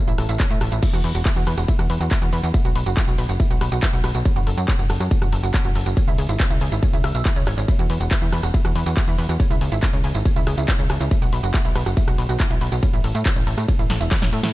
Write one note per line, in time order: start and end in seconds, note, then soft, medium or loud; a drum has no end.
0.08 0.17 A1 medium
0.08 0.12 E4 medium
0.08 closed hi-hat medium
0.08 tambourine soft
0.18 0.27 A1 loud
0.18 0.23 A4 medium
0.18 cross-stick medium
0.18 open hi-hat loud
0.29 0.38 A1 medium
0.29 0.33 E4 medium
0.29 closed hi-hat medium
0.29 tambourine medium
0.40 0.42 C#4 medium
0.40 kick loud
0.40 clap loud
0.40 closed hi-hat medium
0.50 0.60 A2 medium
0.50 0.57 E4 medium
0.50 closed hi-hat medium
0.50 tambourine soft
0.61 0.70 A1 loud
0.61 0.68 A4 medium
0.61 cross-stick medium
0.61 open hi-hat medium
0.72 0.81 A1 loud
0.72 0.76 E4 medium
0.72 closed hi-hat medium
0.72 tambourine medium
0.83 0.85 E4 medium
0.83 kick loud
0.83 closed hi-hat medium
0.83 crash medium
0.83 ride medium
0.83 tambourine medium
0.93 1.02 E2 medium
0.93 0.98 F#4 medium
0.93 closed hi-hat medium
0.93 tambourine soft
1.04 1.13 E2 loud
1.04 1.09 B4 medium
1.04 open hi-hat loud
1.15 1.24 E1 medium
1.15 1.19 F#4 medium
1.15 closed hi-hat medium
1.15 tambourine medium
1.25 1.28 E4 medium
1.25 kick loud
1.25 clap loud
1.25 closed hi-hat medium
1.25 ride medium
1.25 tambourine medium
1.36 1.45 E2 medium
1.36 1.43 F#4 medium
1.36 closed hi-hat medium
1.36 tambourine soft
1.47 1.56 E2 loud
1.47 1.54 B4 medium
1.47 cross-stick medium
1.47 open hi-hat loud
1.58 1.67 E1 medium
1.58 1.62 F#4 medium
1.58 cross-stick medium
1.58 closed hi-hat medium
1.58 tambourine medium
1.68 1.71 E4 medium
1.68 kick loud
1.68 closed hi-hat medium
1.68 ride medium
1.68 tambourine medium
1.79 1.88 E2 medium
1.79 1.84 F#4 medium
1.79 cross-stick medium
1.79 closed hi-hat medium
1.79 tambourine soft
1.90 1.99 E2 loud
1.90 1.94 B4 medium
1.90 open hi-hat loud
2.00 2.10 E2 medium
2.00 2.05 F#4 medium
2.00 tambourine medium
2.11 2.14 E4 medium
2.11 kick loud
2.11 clap loud
2.11 closed hi-hat medium
2.11 ride medium
2.11 tambourine medium
2.22 2.31 E2 medium
2.22 2.29 F#4 medium
2.22 closed hi-hat medium
2.22 tambourine soft
2.33 2.42 E2 loud
2.33 2.39 B4 medium
2.33 open hi-hat medium
2.43 2.52 E2 loud
2.43 2.48 F#4 medium
2.43 closed hi-hat medium
2.43 tambourine medium
2.54 2.57 E4 medium
2.54 kick loud
2.54 closed hi-hat medium
2.54 ride medium
2.54 tambourine medium
2.65 2.74 B1 medium
2.65 2.69 F#4 medium
2.65 closed hi-hat medium
2.65 tambourine soft
2.75 2.85 B1 loud
2.75 2.80 B4 medium
2.75 open hi-hat loud
2.86 2.95 F#1 medium
2.86 2.91 F#4 medium
2.86 closed hi-hat medium
2.86 tambourine medium
2.97 3.00 E4 medium
2.97 kick loud
2.97 clap loud
2.97 closed hi-hat medium
2.97 ride medium
2.97 tambourine medium
3.08 3.17 B1 medium
3.08 3.14 F#4 medium
3.08 closed hi-hat medium
3.08 tambourine soft
3.18 3.27 B1 loud
3.18 3.25 B4 medium
3.18 open hi-hat loud
3.29 3.38 F#1 medium
3.29 3.33 F#4 medium
3.29 closed hi-hat medium
3.29 tambourine medium
3.40 3.42 E4 medium
3.40 kick loud
3.40 closed hi-hat medium
3.40 ride medium
3.40 tambourine medium
3.50 3.60 B1 medium
3.50 3.55 F#4 medium
3.50 closed hi-hat medium
3.50 tambourine soft
3.61 3.70 B1 loud
3.61 3.66 B4 medium
3.61 cross-stick medium
3.61 open hi-hat loud
3.72 3.81 B1 medium
3.72 3.76 F#4 medium
3.72 tambourine medium
3.83 3.85 E4 medium
3.83 kick loud
3.83 clap loud
3.83 closed hi-hat medium
3.83 ride medium
3.83 tambourine medium
3.93 4.02 B1 medium
3.93 4.00 F#4 medium
3.93 closed hi-hat medium
3.93 tambourine soft
4.04 4.13 B1 loud
4.04 4.11 B4 medium
4.04 cross-stick medium
4.04 open hi-hat loud
4.15 4.24 B1 loud
4.15 4.19 F#4 medium
4.15 closed hi-hat medium
4.15 tambourine medium
4.25 4.28 C#4 medium
4.25 kick loud
4.25 closed hi-hat medium
4.25 ride medium
4.25 tambourine medium
4.36 4.45 F#1 medium
4.36 4.41 F#4 medium
4.36 closed hi-hat medium
4.36 tambourine soft
4.47 4.56 F#1 loud
4.47 4.51 A4 medium
4.47 open hi-hat loud
4.57 4.67 F#2 medium
4.57 4.62 F#4 medium
4.57 closed hi-hat soft
4.57 tambourine medium
4.68 4.71 C#4 medium
4.68 kick loud
4.68 clap loud
4.68 closed hi-hat medium
4.68 ride medium
4.68 tambourine medium
4.79 4.88 F#1 medium
4.79 4.86 F#4 medium
4.79 closed hi-hat medium
4.79 tambourine soft
4.90 4.99 F#1 loud
4.90 4.96 A4 medium
4.90 cross-stick medium
4.90 open hi-hat loud
5.00 5.09 F#2 medium
5.00 5.05 F#4 medium
5.00 cross-stick medium
5.00 closed hi-hat medium
5.00 tambourine medium
5.11 5.14 C#4 medium
5.11 kick loud
5.11 closed hi-hat medium
5.11 ride medium
5.11 tambourine medium
5.22 5.31 F#1 medium
5.22 5.26 F#4 medium
5.22 cross-stick medium
5.22 closed hi-hat medium
5.22 tambourine soft
5.32 5.42 F#1 loud
5.32 5.37 A4 medium
5.32 open hi-hat loud
5.43 5.52 F#1 medium
5.43 5.48 F#4 medium
5.43 closed hi-hat medium
5.43 tambourine medium
5.54 5.57 C#4 medium
5.54 kick loud
5.54 clap loud
5.54 closed hi-hat medium
5.54 ride medium
5.54 tambourine medium
5.65 5.74 F#1 medium
5.65 5.71 F#4 medium
5.65 closed hi-hat medium
5.65 tambourine soft
5.75 5.84 F#1 loud
5.75 5.82 A4 medium
5.75 open hi-hat loud
5.86 5.95 F#1 medium
5.86 5.91 F#4 medium
5.86 closed hi-hat medium
5.86 tambourine medium
5.97 6.00 C#4 medium
5.97 kick loud
5.97 closed hi-hat medium
5.97 ride medium
5.97 tambourine medium
6.08 6.17 C#2 medium
6.08 6.12 E4 medium
6.08 closed hi-hat soft
6.08 tambourine soft
6.18 6.27 C#2 loud
6.18 6.23 G#4 medium
6.18 open hi-hat loud
6.29 6.38 G#1 medium
6.29 6.34 E4 medium
6.29 closed hi-hat soft
6.29 tambourine medium
6.40 6.42 C#4 medium
6.40 kick loud
6.40 clap loud
6.40 closed hi-hat medium
6.40 ride medium
6.40 tambourine medium
6.50 6.59 C#2 medium
6.50 6.57 E4 medium
6.50 closed hi-hat medium
6.50 tambourine soft
6.61 6.70 C#2 loud
6.61 6.68 G#4 medium
6.61 open hi-hat loud
6.72 6.81 G#1 medium
6.72 6.76 E4 medium
6.72 closed hi-hat medium
6.72 tambourine medium
6.83 6.85 C#4 medium
6.83 kick loud
6.83 closed hi-hat medium
6.83 ride medium
6.83 tambourine medium
6.93 7.02 C#2 medium
6.93 6.98 E4 medium
6.93 closed hi-hat soft
6.93 tambourine soft
7.04 7.13 C#2 loud
7.04 7.09 E5 medium
7.04 cross-stick medium
7.04 open hi-hat loud
7.15 7.24 B1 medium
7.15 7.21 E5 medium
7.15 closed hi-hat soft
7.15 tambourine medium
7.25 7.30 E4 medium
7.25 kick loud
7.25 clap loud
7.25 closed hi-hat medium
7.25 ride medium
7.25 tambourine medium
7.36 7.45 C#2 medium
7.36 7.43 C#4 loud
7.36 closed hi-hat medium
7.36 tambourine soft
7.47 7.56 G#1 loud
7.47 7.51 C#4 loud
7.47 cross-stick medium
7.47 open hi-hat loud
7.57 7.67 G#1 medium
7.57 7.60 C#4 medium
7.57 closed hi-hat medium
7.57 tambourine medium
7.68 7.71 E4 medium
7.68 kick loud
7.68 closed hi-hat medium
7.68 ride medium
7.68 tambourine medium
7.79 7.88 E2 medium
7.79 7.84 F#4 medium
7.79 closed hi-hat medium
7.79 tambourine soft
7.90 7.99 E2 loud
7.90 7.94 B4 medium
7.90 open hi-hat loud
8.00 8.10 E1 medium
8.00 8.05 F#4 medium
8.00 closed hi-hat soft
8.00 tambourine medium
8.11 8.14 E4 medium
8.11 kick loud
8.11 clap loud
8.11 closed hi-hat medium
8.11 ride medium
8.11 tambourine medium
8.22 8.31 E2 medium
8.22 8.25 E4 medium
8.22 closed hi-hat medium
8.22 tambourine soft
8.32 8.42 E2 loud
8.32 8.39 B4 medium
8.32 cross-stick medium
8.32 open hi-hat medium
8.43 8.52 E1 medium
8.43 8.48 F#4 medium
8.43 cross-stick medium
8.43 closed hi-hat medium
8.43 tambourine medium
8.54 8.57 E4 medium
8.54 kick loud
8.54 closed hi-hat medium
8.54 ride medium
8.54 tambourine medium
8.65 8.74 E2 medium
8.65 8.69 F#4 medium
8.65 cross-stick medium
8.65 closed hi-hat medium
8.65 tambourine soft
8.75 8.85 E2 loud
8.75 8.80 B4 medium
8.75 open hi-hat loud
8.86 8.95 E2 medium
8.86 8.91 F#4 medium
8.86 closed hi-hat medium
8.86 tambourine medium
8.97 9.00 E4 medium
8.97 kick loud
8.97 clap loud
8.97 closed hi-hat medium
8.97 ride medium
8.97 tambourine medium
9.08 9.17 E2 medium
9.08 9.10 E4 medium
9.08 closed hi-hat medium
9.08 tambourine soft
9.18 9.27 E2 loud
9.18 9.25 B4 medium
9.18 open hi-hat medium
9.29 9.38 E2 loud
9.29 9.34 F#4 medium
9.29 tambourine medium
9.40 9.42 C#4 medium
9.40 kick loud
9.40 closed hi-hat medium
9.40 ride medium
9.40 tambourine medium
9.50 9.60 C#2 medium
9.50 9.55 E4 medium
9.50 closed hi-hat medium
9.50 tambourine soft
9.61 9.70 C#2 loud
9.61 9.66 G#4 medium
9.61 open hi-hat loud
9.72 9.81 G#1 medium
9.72 9.76 E4 medium
9.72 closed hi-hat medium
9.72 tambourine medium
9.83 9.85 C#4 medium
9.83 kick loud
9.83 clap loud
9.83 closed hi-hat medium
9.83 ride medium
9.83 tambourine medium
9.93 10.02 C#2 medium
9.93 9.96 C#4 medium
9.93 closed hi-hat medium
9.93 tambourine soft
10.04 10.13 C#2 loud
10.04 10.11 G#4 medium
10.04 open hi-hat medium
10.15 10.24 G#1 medium
10.15 10.19 E4 medium
10.15 closed hi-hat medium
10.15 tambourine medium
10.25 10.28 C#4 medium
10.25 kick loud
10.25 closed hi-hat medium
10.25 ride medium
10.25 tambourine medium
10.36 10.45 C#2 medium
10.36 10.41 E4 medium
10.36 closed hi-hat medium
10.36 tambourine soft
10.47 10.56 C#2 loud
10.47 10.51 G#4 medium
10.47 cross-stick medium
10.47 open hi-hat loud
10.58 10.67 C#2 loud
10.58 10.62 E4 medium
10.58 closed hi-hat medium
10.58 tambourine medium
10.68 10.71 C#4 medium
10.68 kick loud
10.68 clap loud
10.68 closed hi-hat medium
10.68 ride medium
10.68 tambourine medium
10.79 10.88 C#2 medium
10.79 10.82 C#4 medium
10.79 closed hi-hat medium
10.79 tambourine soft
10.90 10.99 C#2 loud
10.90 10.96 G#4 medium
10.90 cross-stick medium
10.90 open hi-hat medium
11.00 11.10 C#2 loud
11.00 11.05 E4 medium
11.00 closed hi-hat medium
11.00 tambourine medium
11.11 11.14 E4 medium
11.11 kick loud
11.11 closed hi-hat medium
11.11 ride medium
11.11 tambourine medium
11.22 11.31 B1 medium
11.22 11.26 F#4 medium
11.22 closed hi-hat medium
11.22 tambourine soft
11.33 11.42 B1 loud
11.33 11.37 B4 medium
11.33 open hi-hat loud
11.43 11.52 F#1 medium
11.43 11.48 F#4 medium
11.43 closed hi-hat medium
11.43 tambourine medium
11.54 11.57 E4 medium
11.54 kick loud
11.54 clap loud
11.54 closed hi-hat medium
11.54 ride medium
11.54 tambourine medium
11.65 11.74 B1 medium
11.65 11.67 E4 medium
11.65 closed hi-hat medium
11.65 tambourine soft
11.75 11.85 B1 loud
11.75 11.82 B4 medium
11.75 cross-stick medium
11.75 open hi-hat medium
11.86 11.95 F#1 medium
11.86 11.91 F#4 medium
11.86 cross-stick medium
11.86 closed hi-hat medium
11.86 tambourine medium
11.97 12.00 E4 medium
11.97 kick loud
11.97 closed hi-hat medium
11.97 ride medium
11.97 tambourine medium
12.08 12.17 B1 medium
12.08 12.12 F#4 medium
12.08 cross-stick medium
12.08 closed hi-hat medium
12.08 tambourine soft
12.18 12.27 B1 loud
12.18 12.23 B4 medium
12.18 open hi-hat loud
12.29 12.38 B1 medium
12.29 12.33 F#4 medium
12.29 closed hi-hat medium
12.29 tambourine medium
12.40 12.42 E4 medium
12.40 kick loud
12.40 clap loud
12.40 closed hi-hat medium
12.40 ride medium
12.40 tambourine medium
12.50 12.60 B1 medium
12.50 12.53 E4 medium
12.50 closed hi-hat medium
12.50 tambourine soft
12.61 12.70 B1 loud
12.61 12.68 B4 medium
12.61 open hi-hat medium
12.72 12.81 B1 loud
12.72 12.76 F#4 medium
12.72 closed hi-hat medium
12.72 tambourine medium
12.83 12.85 C#4 medium
12.83 kick loud
12.83 closed hi-hat medium
12.83 ride medium
12.83 tambourine medium
12.93 13.02 A1 medium
12.93 12.98 E4 medium
12.93 closed hi-hat medium
12.93 tambourine soft
13.04 13.13 A1 loud
13.04 13.09 A4 medium
13.04 open hi-hat loud
13.15 13.24 A2 medium
13.15 13.19 E4 medium
13.15 closed hi-hat medium
13.15 tambourine medium
13.26 13.28 C#4 medium
13.26 kick loud
13.26 clap loud
13.26 closed hi-hat medium
13.26 ride medium
13.26 tambourine medium
13.36 13.45 A1 medium
13.36 13.39 C#4 medium
13.36 closed hi-hat medium
13.36 tambourine soft
13.47 13.56 A1 loud
13.47 13.54 A4 medium
13.47 open hi-hat medium
13.57 13.67 A2 medium
13.57 13.62 E4 medium
13.57 cross-stick medium
13.57 closed hi-hat medium
13.57 tambourine medium
13.68 13.71 C#4 medium
13.68 kick loud
13.68 closed hi-hat medium
13.68 ride medium
13.68 tambourine medium
13.79 13.88 A1 medium
13.79 13.84 E4 medium
13.79 closed hi-hat medium
13.79 tambourine soft
13.90 13.99 A1 loud
13.90 13.94 A4 medium
13.90 snare medium
13.90 open hi-hat loud
14.00 14.10 E1 medium
14.00 14.05 E4 medium
14.00 closed hi-hat medium
14.00 tambourine medium
14.11 14.14 C#4 medium
14.11 kick loud
14.11 snare medium
14.11 clap loud
14.11 closed hi-hat medium
14.11 ride medium
14.11 tambourine medium
14.22 14.31 A1 medium
14.22 14.25 C#4 medium
14.22 snare medium
14.22 closed hi-hat medium
14.22 tambourine soft
14.33 14.42 A2 loud
14.33 14.39 A4 medium
14.33 open hi-hat loud
14.43 14.52 A2 medium
14.43 14.48 E4 medium
14.43 snare medium
14.43 closed hi-hat medium
14.43 tambourine medium